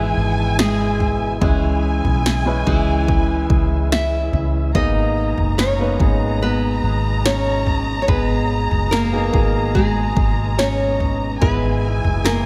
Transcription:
Already playing: fingered electric bass G#1, grand piano G#2 G#3 B3 E4 G#4, tonewheel organ B2 E3 G#3 E4, nylon-string guitar E3 E4, violin section G#5
0.17 fingered electric bass G#1
0.59 nylon-string guitar G#3 G#4, snare
1.00 floor tom
1.41 fingered electric bass C#2, tonewheel organ C#3 E3, grand piano C#3 G#3 C#4 E4 G#4, nylon-string guitar E3 E4, violin section G#5, kick, floor tom
2.04 fingered electric bass B1, floor tom
2.26 snare
2.45 grand piano G#3 C#4 E4 B4
2.66 fingered electric bass C#2, nylon-string guitar E3 E4, grand piano G#3 C#4 E4 G#4, kick, floor tom
3.08 kick, floor tom
3.50 fingered electric bass C#2, kick
3.92 nylon-string guitar E4 E5, snare
4.33 fingered electric bass C#2, floor tom
4.74 fingered electric bass G#1, grand piano G#2 A#3 B3 D#4 G#4, tonewheel organ B2 D#4, nylon-string guitar D#4 D#5, violin section A#5, kick, floor tom
5.38 fingered electric bass F#1, floor tom
5.58 nylon-string guitar C#4 C#5, snare
5.79 grand piano A#3 B3 D#4 B4
5.99 fingered electric bass G#1, grand piano G#3 B3 D#4 G#4, kick, floor tom
6.42 nylon-string guitar B3 B4
6.83 fingered electric bass G#1
7.26 nylon-string guitar C#4 C#5, snare
7.67 floor tom
8.02 nylon-string guitar C#5
8.07 fingered electric bass G#1, grand piano G#2 G#3 B3 D#4 G#4, nylon-string guitar B3 B4, kick, floor tom
8.71 fingered electric bass F#1, floor tom
8.91 nylon-string guitar A#3 A#4, snare
9.11 grand piano A#3 B3 D#4 G#4
9.32 fingered electric bass G#1, grand piano B2 A#3 D#4 G#4, kick, floor tom
9.75 nylon-string guitar G#3 G#4, kick
10.16 fingered electric bass G#1, kick
10.59 nylon-string guitar C#4 C#5, snare
11.00 floor tom
11.41 fingered electric bass G#1, grand piano G#2 G#3 B3 E4 G#4, tonewheel organ E3 G#3 E4, nylon-string guitar B3 B4, violin section G#5, kick, floor tom
12.04 fingered electric bass F#1, floor tom
12.24 nylon-string guitar A#3 A#4, snare

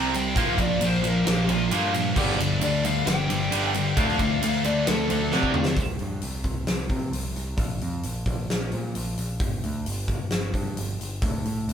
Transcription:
Already playing: picked electric bass C2, distorted electric guitar C3 G3 C4, lead electric guitar A#5
0.14 distorted electric guitar C3 G3 C4, lead electric guitar G5, ride
0.36 picked electric bass A#1, distorted electric guitar A#2 F3 A#3, lead electric guitar F5, kick, ride
0.58 picked electric bass A#1, distorted electric guitar A#2 F3 A#3, lead electric guitar D5, kick, ride
0.81 picked electric bass A#1, distorted electric guitar A#2 F3 A#3, ride
0.86 lead electric guitar C5
1.03 distorted electric guitar A#2 F3 A#3, ride
1.08 lead electric guitar A#4
1.25 picked electric bass A#1, distorted electric guitar A#2 F3 A#3, lead electric guitar G4, snare, ride
1.47 picked electric bass A#1, distorted electric guitar A#2 F3 A#3, ride
1.51 lead electric guitar F4
1.71 picked electric bass G2, distorted electric guitar A#2 F3 A#3, ride
1.93 distorted electric guitar A#2 F3 A#3, ride
2.16 picked electric bass G1, distorted electric guitar G2 D3 G3, kick, crash
2.29 snare
2.38 picked electric bass G1, distorted electric guitar G2 D3 G3, ride
2.60 picked electric bass D2, distorted electric guitar G2 D3 G3, lead electric guitar D5, ride
2.83 distorted electric guitar G2 D3 G3, lead electric guitar F5, ride
3.06 picked electric bass G1, distorted electric guitar G2 D3 G3, lead electric guitar G5, snare, ride
3.29 picked electric bass G1, distorted electric guitar G2 D3 G3, ride
3.52 picked electric bass G1, distorted electric guitar G2 D3 G3, ride
3.73 distorted electric guitar G2 D3 G3, ride
3.96 picked electric bass D2, distorted electric guitar D3 A3 D4, lead electric guitar F5, kick, ride
4.08 snare
4.18 picked electric bass D2, distorted electric guitar D3 A3 D4, kick, ride
4.23 lead electric guitar F5
4.42 picked electric bass D2, distorted electric guitar D3 A3 D4, lead electric guitar F5, ride
4.64 distorted electric guitar D3 A3 D4, lead electric guitar D5, ride
4.86 picked electric bass D2, distorted electric guitar D3 A3 D4, lead electric guitar A4, snare, ride
5.09 picked electric bass D2, distorted electric guitar D3 A3 D4, ride
5.32 picked electric bass C3, distorted electric guitar D3 A3 D4, snare
5.43 kick
5.54 distorted electric guitar D3 A3 D4, mid tom
5.65 snare
5.76 picked electric bass C2, kick, open hi-hat
5.99 picked electric bass G2, open hi-hat
6.21 picked electric bass C2, open hi-hat
6.44 picked electric bass C2, kick, open hi-hat
6.67 picked electric bass C2, snare, open hi-hat
6.89 picked electric bass C3, kick, open hi-hat
7.11 picked electric bass C2, open hi-hat
7.36 picked electric bass C2, open hi-hat
7.57 picked electric bass A#1, kick, open hi-hat
7.81 picked electric bass F2, open hi-hat
8.03 picked electric bass A#1, open hi-hat
8.26 picked electric bass A#1, kick, open hi-hat
8.50 picked electric bass A#1, snare, open hi-hat
8.72 picked electric bass A#2, open hi-hat
8.95 picked electric bass A#1, open hi-hat
9.17 picked electric bass A#1, open hi-hat
9.40 picked electric bass G1, kick, open hi-hat
9.64 picked electric bass D2, open hi-hat
9.86 picked electric bass G1, open hi-hat
10.08 picked electric bass G1, kick, open hi-hat
10.30 picked electric bass G1, snare, open hi-hat
10.54 picked electric bass G2, kick, open hi-hat
10.77 picked electric bass G1, open hi-hat
11.00 picked electric bass G1, open hi-hat
11.22 picked electric bass D2, kick, open hi-hat
11.45 picked electric bass A2, open hi-hat
11.68 picked electric bass D2, open hi-hat

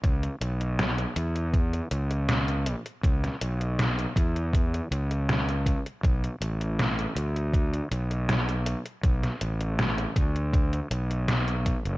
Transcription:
0.04 fingered electric bass C#2, kick, closed hi-hat
0.23 closed hi-hat
0.41 fingered electric bass B1, closed hi-hat
0.61 closed hi-hat
0.79 snare, closed hi-hat
0.98 closed hi-hat
1.16 fingered electric bass E2, closed hi-hat
1.36 closed hi-hat
1.53 kick, closed hi-hat
1.73 closed hi-hat
1.91 fingered electric bass C#2, closed hi-hat
2.11 closed hi-hat
2.29 snare, closed hi-hat
2.48 closed hi-hat
2.66 closed hi-hat
2.86 closed hi-hat
3.04 fingered electric bass C#2, kick, closed hi-hat
3.24 snare, closed hi-hat
3.41 fingered electric bass B1, closed hi-hat
3.61 closed hi-hat
3.79 snare, closed hi-hat
3.99 closed hi-hat
4.16 fingered electric bass E2, kick, closed hi-hat
4.36 closed hi-hat
4.53 kick, closed hi-hat
4.74 closed hi-hat
4.91 fingered electric bass C#2, closed hi-hat
5.11 closed hi-hat
5.29 snare, closed hi-hat
5.49 closed hi-hat
5.66 kick, closed hi-hat
5.86 closed hi-hat
6.03 fingered electric bass B1, kick, closed hi-hat
6.24 closed hi-hat
6.41 fingered electric bass A1, closed hi-hat
6.61 closed hi-hat
6.79 snare, closed hi-hat
6.99 closed hi-hat
7.16 fingered electric bass D2, closed hi-hat
7.36 closed hi-hat
7.53 kick, closed hi-hat
7.73 closed hi-hat
7.91 fingered electric bass B1, closed hi-hat
8.11 closed hi-hat
8.29 snare, closed hi-hat
8.49 closed hi-hat
8.66 closed hi-hat
8.86 closed hi-hat
9.03 fingered electric bass B1, kick, closed hi-hat
9.23 snare, closed hi-hat
9.41 fingered electric bass A1, closed hi-hat
9.61 closed hi-hat
9.79 snare, closed hi-hat
9.98 closed hi-hat
10.16 fingered electric bass D2, kick, closed hi-hat
10.36 closed hi-hat
10.54 kick, closed hi-hat
10.73 closed hi-hat
10.91 fingered electric bass B1, closed hi-hat
11.11 closed hi-hat
11.28 snare, closed hi-hat
11.48 closed hi-hat
11.66 kick, closed hi-hat
11.85 fingered electric bass F#1, closed hi-hat

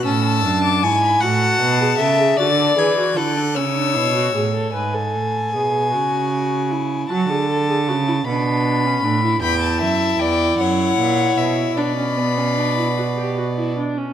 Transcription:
0.05 cello A2, viola C#4, violin A5 E6
0.24 violin A5
0.44 cello F#2, viola D4
0.64 violin D6
0.83 cello G#2, viola E4, violin G#5 C#6
1.04 violin B5
1.21 cello A2, viola F#4, violin F#5 A5
1.60 cello B2
1.80 viola G#4
1.98 cello C#3, viola A4, violin E5
2.19 viola G#4
2.37 cello D3, viola F#4, violin D5 A6
2.58 viola A4
2.78 cello E3, viola G#4, violin G#6
2.98 viola F#4
3.17 cello D3, viola E4, violin A4 F#6
3.36 viola D4
3.55 cello C#3, viola C#4, violin C#5 E6
3.76 viola D4
3.95 cello B2, viola E4
4.15 viola F#4
4.35 cello A2, viola G#4
4.55 viola A4
4.74 cello G#2, viola B4, violin G#5
4.94 viola A4
5.15 cello A2
5.54 cello B2, viola G#4
5.93 cello C#3, viola F#4
6.71 viola E4
7.10 cello F#3, viola F#4, violin A5
7.29 cello D3, viola G#4
7.50 viola A4
7.69 viola G#4
7.88 cello C#3, viola F#4
8.08 viola E4
8.26 cello B2, viola D4, violin B5
8.86 viola C#4
9.03 cello A2, viola D4
9.23 viola E4
9.42 cello E2, viola E4, violin G5 B5
9.62 violin A5
9.81 cello F#2, violin E5
10.19 cello E2, violin D5 G5
10.58 cello F#2, violin C#5 F#5
10.98 cello A#2
11.38 cello B2, violin E5
11.77 cello B2, viola D4, violin D5 B5
11.98 viola C#4
12.18 viola B3
12.37 viola C#4
12.57 viola D4
12.77 viola E4
12.98 viola F#4
13.18 viola G4
13.38 viola F#4
13.58 viola E4
13.78 viola D4
13.98 viola C#4

